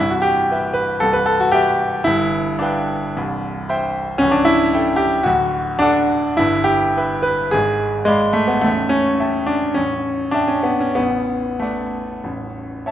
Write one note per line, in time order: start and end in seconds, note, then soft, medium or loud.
0.00 1.00 C1 medium
0.00 1.00 C2 medium
0.00 0.11 E4 loud
0.10 0.24 F#4 medium
0.22 0.75 G4 loud
0.51 0.72 B4 medium
0.51 0.99 E5 medium
0.51 0.99 G5 medium
0.74 1.01 B4 loud
1.00 2.04 C1 medium
1.00 2.04 C2 medium
1.00 1.14 A4 loud
1.13 1.27 B4 loud
1.26 1.40 A4 loud
1.40 1.54 F#4 loud
1.52 2.06 G4 loud
1.52 2.03 B4 medium
1.52 2.03 E5 medium
1.52 2.03 G5 medium
2.04 3.12 G1 medium
2.04 3.12 G2 medium
2.04 2.60 E4 loud
2.59 3.67 D4 medium
2.59 3.11 B4 medium
2.59 3.11 F5 medium
2.59 3.12 G5 medium
3.17 4.18 C1 medium
3.17 4.18 C2 medium
3.69 4.17 C5 medium
3.69 4.17 E5 medium
3.69 4.17 G5 medium
4.18 5.23 C#1 medium
4.18 5.24 C#2 medium
4.18 4.33 C#4 loud
4.31 4.46 D4 loud
4.45 4.99 E4 loud
4.73 5.23 A4 medium
4.73 5.23 E5 medium
4.73 5.23 G5 medium
4.96 5.25 G4 loud
5.23 6.36 D1 medium
5.23 6.35 D2 medium
5.23 5.80 F#4 loud
5.79 6.37 D4 loud
5.79 6.35 A4 medium
5.79 6.35 D5 medium
5.79 6.35 F#5 medium
6.37 7.50 G1 medium
6.37 7.51 G2 medium
6.37 6.67 E4 loud
6.64 7.24 G4 loud
6.97 7.21 B4 medium
6.97 7.50 E5 medium
6.97 7.50 B5 medium
7.22 7.52 B4 loud
7.51 8.61 G#1 medium
7.51 8.61 G#2 medium
7.51 8.07 G#4 loud
8.05 8.35 G#3 loud
8.05 8.60 D5 medium
8.05 8.60 F5 medium
8.05 8.60 B5 medium
8.33 8.49 A3 loud
8.48 8.63 B3 medium
8.61 9.73 A0 medium
8.61 9.73 A1 medium
8.61 8.90 A3 loud
8.89 9.47 C#4 loud
9.20 9.73 E5 medium
9.20 9.73 G5 soft
9.20 9.73 A5 medium
9.46 9.76 D4 loud
9.74 10.94 A0 medium
9.74 10.94 A1 medium
9.74 10.33 C#4 medium
10.31 10.48 D4 loud
10.31 10.94 E5 soft
10.31 10.94 G5 medium
10.31 10.94 A5 medium
10.48 10.64 C#4 medium
10.63 10.80 B3 medium
10.80 10.97 C#4 medium
10.95 12.21 A0 medium
10.95 12.20 A1 medium
10.95 11.61 B3 loud
11.59 12.91 A3 medium
11.59 12.20 D5 soft
11.59 12.20 F#5 soft
11.59 12.21 A5 soft
12.24 12.91 A0 soft
12.24 12.91 A1 soft
12.86 12.91 C#5 soft
12.86 12.91 E5 soft
12.86 12.91 A5 medium